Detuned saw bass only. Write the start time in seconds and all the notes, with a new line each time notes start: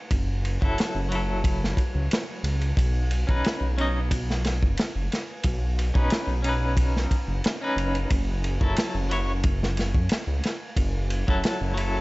0.11 F#1
0.62 F#1
0.95 F#1
1.95 C#2
2.43 C#2
2.77 B1
3.29 B1
3.61 B1
4.62 F#1
4.95 F#1
5.44 B1
5.95 B1
6.27 B1
7.27 F#1
7.76 F#1
8.11 F#1
8.61 F#1
8.94 F#1
9.94 F#2
10.27 C#2
10.77 F#1
11.28 F#1
11.61 F#1